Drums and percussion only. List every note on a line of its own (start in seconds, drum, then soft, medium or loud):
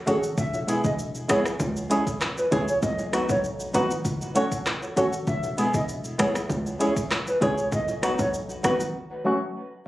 0.07 closed hi-hat medium
0.07 low bongo medium
0.07 shaker soft
0.23 shaker medium
0.38 kick loud
0.38 high bongo medium
0.38 shaker medium
0.54 high bongo medium
0.54 shaker soft
0.69 closed hi-hat medium
0.69 shaker medium
0.84 kick medium
0.84 shaker medium
0.99 shaker medium
1.15 shaker medium
1.29 cross-stick loud
1.29 closed hi-hat medium
1.29 low bongo medium
1.29 shaker medium
1.45 cross-stick medium
1.45 high bongo medium
1.45 shaker medium
1.60 kick loud
1.60 high bongo medium
1.60 shaker medium
1.76 shaker medium
1.91 closed hi-hat medium
1.91 shaker medium
2.07 kick loud
2.07 shaker medium
2.21 cross-stick loud
2.21 clap loud
2.21 high bongo medium
2.21 shaker medium
2.38 high bongo soft
2.38 shaker soft
2.52 kick medium
2.52 closed hi-hat medium
2.52 low bongo medium
2.52 shaker soft
2.68 shaker medium
2.82 kick loud
2.82 high bongo medium
2.82 shaker medium
2.99 high bongo medium
2.99 shaker medium
3.13 cross-stick medium
3.13 closed hi-hat medium
3.13 shaker medium
3.29 kick medium
3.29 shaker medium
3.44 shaker medium
3.60 shaker medium
3.74 closed hi-hat medium
3.74 low bongo medium
3.74 shaker medium
3.91 high bongo medium
3.91 shaker medium
4.05 kick loud
4.05 high bongo medium
4.05 shaker medium
4.22 shaker medium
4.36 closed hi-hat medium
4.36 shaker medium
4.52 kick loud
4.52 shaker medium
4.66 cross-stick medium
4.66 clap medium
4.66 high bongo medium
4.66 shaker medium
4.83 high bongo soft
4.83 shaker soft
4.97 closed hi-hat medium
4.97 low bongo medium
4.97 shaker soft
5.13 shaker medium
5.27 kick loud
5.27 high bongo medium
5.27 shaker medium
5.43 high bongo medium
5.43 shaker soft
5.58 closed hi-hat medium
5.58 shaker medium
5.74 kick medium
5.74 shaker medium
5.89 shaker medium
6.04 shaker medium
6.19 cross-stick loud
6.19 closed hi-hat medium
6.19 low bongo medium
6.19 shaker medium
6.35 cross-stick medium
6.35 high bongo medium
6.35 shaker medium
6.50 kick loud
6.50 high bongo medium
6.50 shaker medium
6.66 shaker medium
6.81 closed hi-hat medium
6.81 shaker medium
6.96 kick loud
6.96 shaker medium
7.11 cross-stick loud
7.11 clap loud
7.11 high bongo medium
7.11 shaker medium
7.27 high bongo soft
7.27 shaker soft
7.41 kick medium
7.41 closed hi-hat medium
7.41 low bongo medium
7.41 shaker soft
7.58 shaker medium
7.72 kick loud
7.72 high bongo medium
7.72 shaker medium
7.88 high bongo medium
7.88 shaker soft
8.03 cross-stick medium
8.03 closed hi-hat medium
8.03 shaker medium
8.19 kick medium
8.19 shaker medium
8.34 shaker medium
8.50 shaker medium
8.64 cross-stick medium
8.64 closed hi-hat medium
8.64 low bongo medium
8.64 shaker medium
8.80 high bongo medium
8.80 shaker medium